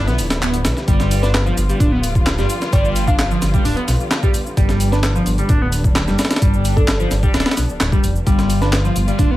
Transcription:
Already playing: string section D3 F3 G3 B3 E4
0.07 detuned saw bass B1, analog synth lead B3, snare, shaker
0.18 detuned saw bass D1, closed hi-hat, open hi-hat, shaker
0.30 snare, closed hi-hat, shaker
0.42 analog synth lead B3, snare, clap, shaker
0.54 closed hi-hat, shaker
0.65 detuned saw bass B1, snare, closed hi-hat, open hi-hat, shaker
0.77 snare, shaker
0.88 detuned saw bass G1, analog synth lead G3, string section F4, kick, closed hi-hat, shaker
1.00 snare, shaker
1.11 closed hi-hat, open hi-hat, shaker
1.23 analog synth lead D4, fm electric piano B4, snare, shaker
1.34 fm electric piano B4, snare, clap, closed hi-hat, shaker
1.46 analog synth lead F3, shaker
1.57 detuned saw bass G1, closed hi-hat, open hi-hat, shaker
1.69 analog synth lead G3, closed hi-hat, shaker
1.80 detuned saw bass D1, analog synth lead D4, kick, closed hi-hat, shaker
1.92 analog synth lead B3
2.03 closed hi-hat, open hi-hat, shaker
2.15 kick, shaker
2.26 snare, clap, closed hi-hat, shaker
2.38 detuned saw bass G1, analog synth lead G3, snare, shaker
2.50 closed hi-hat, open hi-hat, shaker
2.62 snare, shaker
2.73 detuned saw bass G1, analog synth lead G3, fm electric piano D5, kick, closed hi-hat, shaker
2.85 shaker
2.96 closed hi-hat, open hi-hat, shaker
3.08 analog synth lead D4, fm electric piano F5, kick, shaker
3.19 fm electric piano F5, snare, clap, closed hi-hat, shaker
3.30 analog synth lead F3, shaker
3.42 detuned saw bass G1, snare, closed hi-hat, open hi-hat, shaker
3.54 analog synth lead G3, kick, shaker
3.65 detuned saw bass D1, analog synth lead D4, open hi-hat, shaker
3.76 analog synth lead B3, closed hi-hat
3.88 detuned saw bass B1, snare, closed hi-hat, open hi-hat, shaker
4.00 shaker
4.11 snare, clap, closed hi-hat, shaker
4.23 analog synth lead G3, kick, shaker
4.34 closed hi-hat, open hi-hat, shaker
4.46 shaker
4.57 detuned saw bass G1, analog synth lead G3, string section D4, kick, closed hi-hat, shaker
4.69 snare, shaker
4.80 closed hi-hat, open hi-hat, shaker
4.92 analog synth lead D4, fm electric piano B4, snare, shaker
5.03 fm electric piano B4, snare, clap, closed hi-hat, shaker
5.15 analog synth lead F3, shaker
5.26 detuned saw bass G1, closed hi-hat, open hi-hat, shaker
5.38 analog synth lead G3, closed hi-hat, shaker
5.49 detuned saw bass D1, analog synth lead D4, kick, closed hi-hat, shaker
5.62 analog synth lead B3
5.72 closed hi-hat, open hi-hat, shaker
5.84 kick, shaker
5.95 snare, clap, closed hi-hat, shaker
6.08 detuned saw bass G1, analog synth lead G3, snare, shaker
6.19 snare, closed hi-hat, open hi-hat, shaker
6.25 snare, closed hi-hat
6.31 snare, closed hi-hat, shaker
6.36 snare, closed hi-hat
6.42 detuned saw bass G1, analog synth lead G3, kick, closed hi-hat, shaker
6.54 shaker
6.65 closed hi-hat, open hi-hat, shaker
6.76 analog synth lead D4, fm electric piano A4, kick, shaker
6.88 snare, clap, closed hi-hat, shaker
7.00 analog synth lead F3, shaker
7.11 detuned saw bass G1, snare, closed hi-hat, open hi-hat, shaker
7.23 analog synth lead G3, kick, shaker
7.34 detuned saw bass D1, analog synth lead D4, snare, closed hi-hat, shaker
7.40 snare, closed hi-hat
7.46 analog synth lead B3, snare, closed hi-hat
7.51 snare, closed hi-hat
7.57 detuned saw bass B1, snare, closed hi-hat, open hi-hat, shaker
7.69 detuned saw bass D1, shaker
7.80 detuned saw bass D1, snare, clap, closed hi-hat, shaker
7.92 analog synth lead G3, kick, shaker
8.04 detuned saw bass F1, closed hi-hat, open hi-hat, shaker
8.16 shaker
8.26 detuned saw bass G1, analog synth lead G3, string section F4, kick, closed hi-hat, shaker
8.39 snare, shaker
8.50 closed hi-hat, open hi-hat, shaker
8.61 analog synth lead D4, fm electric piano B4, snare, shaker
8.73 fm electric piano B4, snare, clap, closed hi-hat, shaker
8.84 analog synth lead F3, shaker
8.96 detuned saw bass G1, closed hi-hat, open hi-hat, shaker
9.08 analog synth lead G3, closed hi-hat, shaker
9.19 detuned saw bass D1, analog synth lead D4, kick, closed hi-hat, shaker
9.31 analog synth lead B3

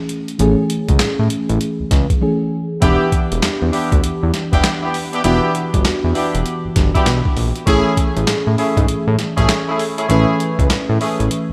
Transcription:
Already playing: fm electric piano E3 A3 C#4 G#4
0.09 closed hi-hat
0.28 closed hi-hat
0.39 analog synth bass A1, fm electric piano E3 A3 C#4 G#4, closed hi-hat
0.70 closed hi-hat
0.89 analog synth bass C#2, kick, closed hi-hat
0.99 analog synth bass A2, snare, clap, closed hi-hat
1.19 analog synth bass A2
1.30 closed hi-hat
1.49 analog synth bass A1, closed hi-hat
1.61 closed hi-hat
1.80 analog synth bass C#2
1.91 analog synth bass C#2, kick, snare, closed hi-hat
2.10 kick, closed hi-hat
2.21 fm electric piano E3 A3 C#4 G#4
2.81 analog synth bass E1, fm electric piano E3 B3 D4 G4, horn section B3 D4 E4 G4, kick, closed hi-hat
3.12 kick, closed hi-hat
3.32 analog synth bass E1, closed hi-hat
3.43 analog synth bass E2, snare, clap, closed hi-hat
3.62 analog synth bass E2
3.72 horn section B3 D4 E4 G4, open hi-hat
3.92 analog synth bass D2, kick, closed hi-hat
4.04 analog synth bass E2, closed hi-hat
4.23 analog synth bass E2
4.34 snare, closed hi-hat
4.52 analog synth bass E1, horn section B3 D4 E4 G4, kick, closed hi-hat
4.64 snare, clap, closed hi-hat
4.82 horn section B3 D4 E4 G4
4.94 open hi-hat
5.12 horn section B3 D4 E4 G4, closed hi-hat
5.23 analog synth bass E1, fm electric piano E3 B3 D4 F#4, horn section B3 D4 E4 G4, closed hi-hat
5.55 closed hi-hat
5.74 analog synth bass G1, kick, closed hi-hat
5.85 analog synth bass E2, snare, clap, closed hi-hat
6.04 analog synth bass E2
6.15 horn section B3 D4 E4 G4, open hi-hat
6.35 analog synth bass E1, closed hi-hat
6.46 closed hi-hat
6.65 analog synth bass G1
6.76 analog synth bass G1, kick, snare, closed hi-hat
6.94 horn section B3 D4 E4 G4, kick, closed hi-hat
7.06 analog synth bass B1, snare, clap, closed hi-hat
7.25 kick
7.37 analog synth bass A#1, open hi-hat
7.56 closed hi-hat
7.66 analog synth bass A1, fm electric piano E3 A3 C#4 G#4, horn section A3 C#4 E4 G#4, kick, closed hi-hat
7.97 kick, closed hi-hat
8.17 analog synth bass A1, closed hi-hat
8.27 analog synth bass A2, snare, clap, closed hi-hat
8.47 analog synth bass A2
8.57 horn section A3 C#4 E4 G#4, open hi-hat
8.77 analog synth bass G#2, kick, closed hi-hat
8.88 analog synth bass A2, closed hi-hat
9.07 analog synth bass A2
9.19 snare, closed hi-hat
9.37 analog synth bass A1, horn section A3 C#4 E4 G#4, kick, closed hi-hat
9.49 snare, clap, closed hi-hat
9.67 horn section A3 C#4 E4 G#4
9.79 open hi-hat
9.98 horn section A3 C#4 E4 G#4, closed hi-hat
10.09 analog synth bass A1, fm electric piano E3 A3 C#4 B4, horn section A3 C#4 E4 G#4, closed hi-hat
10.40 closed hi-hat
10.59 analog synth bass C#2, kick, closed hi-hat
10.70 analog synth bass A2, snare, clap, closed hi-hat
10.89 analog synth bass A2
11.00 horn section A3 C#4 E4 G#4, open hi-hat
11.20 analog synth bass A1, closed hi-hat
11.31 closed hi-hat
11.50 analog synth bass C#2

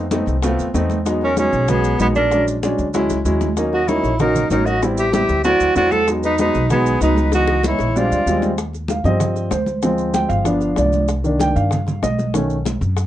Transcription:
Already playing: upright bass F2
0.11 grand piano A3 B3 C4 D#4, high bongo, high conga, maracas
0.26 upright bass C2, high bongo, high conga, maracas
0.42 grand piano A3 B3 C4 F4, high bongo, high conga, maracas
0.58 upright bass D2, high conga, maracas
0.74 upright bass E2, grand piano A3 B3 C4 D#4, high bongo, low bongo, high conga, maracas
0.90 high bongo, high conga, maracas
1.06 grand piano F#3 G#3 B3 D#4, high bongo, high conga, maracas
1.21 tenor saxophone C#4, flute A#4, high bongo, high conga
1.37 grand piano F#3 G#3 B3 D#4, tenor saxophone C#4, flute G#4, high bongo, high conga, maracas
1.53 upright bass B1, high bongo, maracas
1.68 grand piano F#3 G#3 B3 C#4, tenor saxophone B3, flute G#4, high bongo, high conga, low conga, maracas
1.84 high conga, maracas
1.99 upright bass A#1, grand piano F#3 G#3 B3 D#4, tenor saxophone B3, flute G#4, high bongo, low bongo, high conga, maracas
2.15 tenor saxophone D4, flute A#4, high bongo, high conga, maracas
2.31 grand piano F#3 G#3 C#4 D4, high bongo, high conga, maracas
2.48 high bongo, high conga, maracas
2.62 grand piano F#3 G#3 C#4 D4, high bongo, high conga, maracas
2.78 upright bass D2, high bongo, high conga, maracas
2.94 grand piano F#3 G#3 C#4 E4, high bongo, high conga, maracas
3.10 upright bass C#2, high bongo, high conga, maracas
3.25 upright bass D#2, grand piano F#3 G#3 C#4 E4, low bongo, high conga, maracas
3.41 low bongo, high conga, maracas
3.57 grand piano F#3 A#3 C#4 D#4, high bongo, high conga, maracas
3.73 tenor saxophone F#4, flute D#5, high bongo, high conga
3.88 grand piano F#3 A#3 C#4 D#4, tenor saxophone E4, flute C#5, high bongo, high conga, maracas
4.03 upright bass A#1, high bongo, maracas
4.19 grand piano F#3 A#3 C#4 F#4, tenor saxophone D#4, flute A#4, high bongo, high conga, low conga, maracas
4.35 high conga, low conga, maracas
4.50 upright bass A1, grand piano F#3 A#3 C#4 D#4, tenor saxophone D#4, flute A#4, high bongo, low bongo, high conga, maracas
4.65 tenor saxophone F#4, flute D#5, high bongo, maracas
4.82 grand piano G3 B3 C4 E4, high bongo, maracas
4.97 tenor saxophone G4, flute E5, high bongo, high conga, maracas
5.12 grand piano G3 B3 C4 E4, tenor saxophone G4, flute E5, high bongo, high conga, maracas
5.29 upright bass D2, high bongo, high conga, maracas
5.44 grand piano F#3 A3 C4 E4, tenor saxophone F#4, flute D5, high bongo, high conga, maracas
5.60 upright bass D2, high conga, maracas
5.75 upright bass E2, grand piano F#3 A3 C4 E4, tenor saxophone F#4, flute D5, high bongo, low bongo, high conga, maracas
5.91 tenor saxophone A4, flute F#5, high bongo, high conga, maracas
6.07 grand piano F#3 G#3 B3 D#4, high bongo, high conga, maracas
6.23 tenor saxophone D#4, flute B4, high bongo, high conga, maracas
6.38 grand piano F#3 G#3 B3 D#4, tenor saxophone D#4, flute B4, high bongo, high conga, maracas
6.54 upright bass B1, high bongo, maracas
6.70 grand piano F#3 G#3 B3 D#4, tenor saxophone B3, flute G#4, high bongo, high conga, low conga, maracas
6.86 maracas
7.01 upright bass C#2, grand piano F#3 G#3 B3 D#4, tenor saxophone D#4, flute B4, high bongo, low bongo, high conga, maracas
7.17 high bongo, high conga, maracas
7.32 grand piano E3 G#3 B3 D#4, tenor saxophone F#4, flute D#5, high bongo, high conga, maracas
7.48 high bongo, high conga
7.63 grand piano E3 G#3 B3 D#4, tenor saxophone E4, flute C#5, high bongo, high conga, maracas
7.79 upright bass A#1, high bongo, maracas
7.96 grand piano G3 G#3 C4 D4, tenor saxophone F4, flute D5, high conga, maracas
8.11 upright bass D2, high conga, maracas
8.26 upright bass D#2, grand piano G3 G#3 C4 F4, high conga, maracas
8.42 low bongo, high conga, maracas
8.58 high bongo, high conga, maracas
8.73 high bongo, high conga, maracas
8.88 grand piano F5, high bongo, high conga, maracas
9.04 upright bass G2, grand piano F3 G3 C4 D#5, high conga, maracas
9.20 high bongo, high conga, low conga, maracas
9.36 high bongo, high conga, maracas
9.51 upright bass D2, grand piano C5, high bongo, low bongo, high conga, maracas
9.67 high bongo, high conga, maracas
9.83 grand piano F3 G#3 C4, high bongo, high conga, maracas
9.98 high conga, maracas
10.14 grand piano G5, high bongo, high conga, maracas
10.29 upright bass G1, grand piano F5, high bongo, maracas
10.44 grand piano F3 B3 D4, high bongo, high conga, maracas
10.61 high bongo, high conga, maracas
10.76 upright bass C2, grand piano D5, high bongo, low bongo, high conga, maracas
10.93 high bongo, high conga, maracas
11.08 high bongo, high conga, maracas
11.24 grand piano D#3 A#3 D4, high bongo, high conga, maracas
11.39 grand piano G5, high bongo, high conga, maracas
11.56 upright bass G2, grand piano F5, high conga, maracas
11.71 high bongo, high conga, low conga, maracas
11.87 high bongo, high conga, low conga, maracas
12.03 upright bass B1, grand piano D#5, high bongo, low bongo, high conga, maracas
12.19 high bongo, high conga, maracas
12.34 grand piano D#3 A3 C#4, high bongo, maracas
12.50 high conga, maracas
12.65 high bongo, high conga, maracas
12.81 upright bass F#2, high bongo, high conga, maracas
12.97 high bongo, high conga, maracas

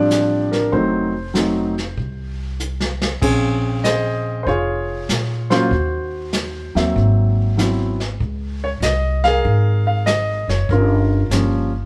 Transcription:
Already playing: upright bass A1, grand piano F3 G3 C4 D4 D5
0.11 snare, hi-hat pedal
0.51 grand piano A#4, snare
0.72 upright bass F1, grand piano F#3 A3 C4 D#4 C5, brush sweep, kick
1.34 grand piano F#3 A3 C4 D#4, snare, hi-hat pedal
1.78 snare
1.97 upright bass C2, brush sweep, kick
2.60 hi-hat pedal
2.80 snare
3.02 snare
3.22 upright bass A#1, grand piano C4 C#4 G#4, brush sweep, kick, crash
3.84 grand piano G#4 C5 D#5, snare, hi-hat pedal
4.43 upright bass F1, grand piano C5 C#5, brush sweep, kick
4.48 grand piano F4 G#4
5.09 upright bass A#2, snare, hi-hat pedal
5.50 grand piano F#3 A#3 C#4 F4 F#4 C5, snare
5.70 upright bass D#2, brush sweep, kick
6.33 snare, hi-hat pedal
6.75 upright bass D#2, grand piano F#3 A#3 C4 E5, snare
6.96 upright bass G#1, brush sweep, kick
7.57 grand piano F#3 B3 C4 E4, snare, hi-hat pedal
8.00 snare
8.20 upright bass C#2, brush sweep, kick
8.64 grand piano C#5
8.80 upright bass C2, grand piano D#5, snare, hi-hat pedal
9.24 grand piano G#4 A#4 F5, snare
9.45 upright bass G#1, brush sweep, kick
9.87 grand piano F5
10.06 grand piano D#5, snare, hi-hat pedal
10.48 upright bass F#1, grand piano C#5, snare
10.69 upright bass G1, grand piano C#4 F4 A#4, brush sweep, kick
11.30 upright bass G1, grand piano F3 G3 A#3 C#4, snare, hi-hat pedal

